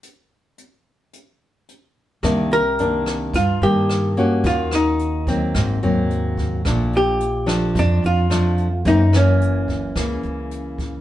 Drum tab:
HH |x-x-x-x-|xxxxxxxx|xxxxxxxx|xxxxxxxx|
SD |--------|r--r--r-|-r--r---|r--r--r-|
BD |--------|o---o---|o--oo--o|o---o---|

HH |xxxxxxxx|
SD |-r--r---|
BD |o--oo--o|